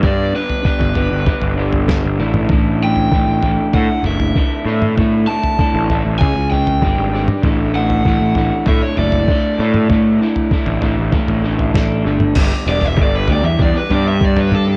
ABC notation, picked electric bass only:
X:1
M:4/4
L:1/16
Q:1/4=97
K:Amix
V:1 name="Picked electric bass" clef=bass
G,,2 z3 G,,,2 G,,, z G,,,4 G,,, A,,,2 | A,,,4 A,,, A,,, A,,, z A,, z F,,,2 z2 A,,2 | A,,2 z3 A,,,2 A,,, C,, C,,3 G,,, ^G,,,2 z | A,,,4 A,,, A,,, A,,, z A,, z F,,,2 z2 A,,2 |
A,,2 z3 A,,,2 A,,, z A,,,3 A,,,2 G,,,2 | G,,, z E,,,2 G,,,2 D,, E,,2 z G,,6 |]